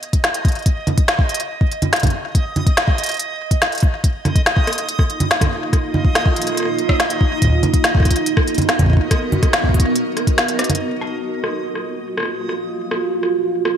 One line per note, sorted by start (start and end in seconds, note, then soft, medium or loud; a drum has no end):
0.00 10.81 D#5 medium
0.00 closed hi-hat soft
0.13 kick medium
0.13 closed hi-hat medium
0.24 snare loud
0.24 closed hi-hat medium
0.34 closed hi-hat medium
0.45 kick loud
0.45 closed hi-hat soft
0.48 closed hi-hat soft
0.52 closed hi-hat soft
0.55 closed hi-hat soft
0.59 closed hi-hat soft
0.62 closed hi-hat soft
0.66 kick loud
0.66 closed hi-hat medium
0.87 closed hi-hat soft
0.87 low conga medium
0.98 kick loud
0.98 closed hi-hat medium
1.08 snare loud
1.08 closed hi-hat medium
1.19 kick loud
1.29 closed hi-hat soft
1.34 closed hi-hat medium
1.40 closed hi-hat medium
1.61 kick loud
1.72 closed hi-hat soft
1.82 closed hi-hat medium
1.82 low conga medium
1.93 snare loud
1.93 closed hi-hat medium
1.96 closed hi-hat soft
2.00 kick loud
2.00 closed hi-hat soft
2.03 closed hi-hat medium
2.03 low conga medium
2.07 closed hi-hat soft
2.35 kick loud
2.35 closed hi-hat medium
2.56 closed hi-hat soft
2.56 low conga medium
2.67 kick loud
2.67 closed hi-hat medium
2.77 snare loud
2.77 closed hi-hat medium
2.88 kick loud
2.98 closed hi-hat soft
3.04 closed hi-hat medium
3.06 closed hi-hat soft
3.09 closed hi-hat soft
3.11 closed hi-hat soft
3.14 closed hi-hat soft
3.17 closed hi-hat soft
3.19 closed hi-hat medium
3.51 kick medium
3.51 closed hi-hat medium
3.62 snare loud
3.62 closed hi-hat medium
3.72 closed hi-hat soft
3.75 closed hi-hat soft
3.78 closed hi-hat soft
3.80 kick loud
3.80 closed hi-hat soft
4.04 7.42 A#3 medium
4.04 kick loud
4.04 closed hi-hat medium
4.13 7.42 F4 medium
4.18 12.15 D#4 medium
4.25 cross-stick soft
4.25 closed hi-hat soft
4.25 low conga medium
4.31 13.77 D#5 medium
4.31 8.16 F5 medium
4.36 kick loud
4.36 closed hi-hat medium
4.46 snare loud
4.46 closed hi-hat medium
4.57 kick loud
4.67 cross-stick medium
4.67 closed hi-hat soft
4.73 closed hi-hat medium
4.78 closed hi-hat soft
4.89 closed hi-hat medium
4.99 kick loud
4.99 cross-stick medium
5.10 closed hi-hat soft
5.20 closed hi-hat medium
5.20 low conga medium
5.31 snare loud
5.31 closed hi-hat medium
5.41 kick loud
5.41 cross-stick medium
5.41 closed hi-hat medium
5.41 low conga medium
5.73 kick loud
5.73 cross-stick medium
5.73 closed hi-hat medium
5.94 low conga medium
6.05 kick loud
6.15 cross-stick medium
6.15 snare loud
6.15 closed hi-hat medium
6.26 kick loud
6.36 closed hi-hat soft
6.42 closed hi-hat medium
6.47 cross-stick soft
6.47 closed hi-hat soft
6.50 cross-stick soft
6.52 cross-stick soft
6.55 cross-stick soft
6.57 cross-stick soft
6.57 closed hi-hat medium
6.60 cross-stick soft
6.63 cross-stick soft
6.65 cross-stick soft
6.79 closed hi-hat soft
6.89 kick medium
6.89 cross-stick medium
7.00 snare loud
7.00 closed hi-hat medium
7.10 closed hi-hat medium
7.21 kick loud
7.42 10.80 B3 medium
7.42 kick medium
7.42 closed hi-hat medium
7.45 kick medium
7.47 13.77 F#4 medium
7.47 kick medium
7.50 kick soft
7.53 kick soft
7.55 kick soft
7.58 kick soft
7.60 kick soft
7.60 closed hi-hat soft
7.60 low conga medium
7.74 kick loud
7.74 closed hi-hat soft
7.78 12.15 A#4 loud
7.84 snare loud
7.84 closed hi-hat medium
7.95 kick loud
7.95 cross-stick soft
7.97 cross-stick soft
8.00 kick medium
8.00 cross-stick soft
8.03 kick medium
8.03 cross-stick soft
8.03 closed hi-hat soft
8.11 kick medium
8.11 closed hi-hat medium
8.16 closed hi-hat medium
8.26 closed hi-hat medium
8.37 kick loud
8.37 cross-stick medium
8.47 closed hi-hat soft
8.55 closed hi-hat soft
8.58 closed hi-hat soft
8.58 low conga medium
8.62 closed hi-hat soft
8.69 cross-stick medium
8.69 snare loud
8.69 closed hi-hat medium
8.79 kick medium
8.79 closed hi-hat medium
8.79 low conga medium
8.83 kick medium
8.86 kick medium
8.90 kick medium
8.93 kick medium
8.97 kick medium
9.11 kick loud
9.11 cross-stick medium
9.11 closed hi-hat medium
9.32 closed hi-hat soft
9.32 low conga medium
9.43 kick loud
9.43 cross-stick medium
9.43 closed hi-hat medium
9.53 snare loud
9.53 closed hi-hat medium
9.64 kick medium
9.69 kick medium
9.74 kick medium
9.74 closed hi-hat soft
9.80 kick medium
9.80 closed hi-hat medium
9.96 closed hi-hat medium
10.17 cross-stick medium
10.17 closed hi-hat soft
10.27 kick medium
10.27 closed hi-hat medium
10.38 snare loud
10.38 closed hi-hat medium
10.48 closed hi-hat medium
10.59 cross-stick medium
10.59 closed hi-hat medium
10.64 closed hi-hat medium
10.70 closed hi-hat medium
10.70 low conga medium
10.75 closed hi-hat medium
10.80 13.77 A#3 medium
10.90 13.77 F4 medium
11.01 cross-stick medium
11.44 cross-stick medium
11.69 13.77 F5 medium
11.75 cross-stick medium
12.17 cross-stick medium
12.20 cross-stick medium
12.23 cross-stick soft
12.25 cross-stick soft
12.49 cross-stick medium
12.91 cross-stick medium
13.23 cross-stick soft
13.65 cross-stick medium